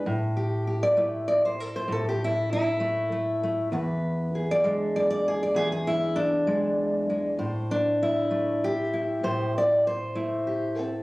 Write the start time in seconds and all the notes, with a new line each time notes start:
0.06 A2
0.37 G4
0.67 G4
0.83 D5
0.97 A3 E4
1.28 D5
1.45 C5
1.60 A4
1.76 C5
1.88 A2
1.92 A4
2.09 G4
2.24 E4
2.53 E4
2.80 A3
3.12 A3
3.43 A3
3.72 E2 B4
4.35 G#4
4.51 D5
4.64 G#3 D4
4.96 D5
5.10 D5
5.28 G#4
5.43 D5
5.55 E2 G#4
5.72 G#4
5.87 E4
6.16 D4
6.47 G#3
7.10 G#3
7.39 A2 C5
7.71 D4
8.03 E4
8.31 A3
8.64 G4
8.94 E4
9.23 A2 C5
9.58 D5
9.87 C5
10.15 A3 E4
10.47 G4
10.79 C4 A4